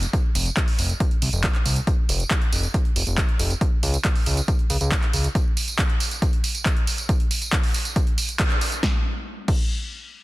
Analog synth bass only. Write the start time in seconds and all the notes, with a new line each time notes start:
0.35 F1
0.79 F1
1.22 C2
1.33 F1
1.65 C2
2.09 F1
2.52 F1
2.96 F1
3.07 F1
3.39 F1
3.83 C#2
4.26 C#2
4.70 C#2
4.81 C#2
5.13 C#2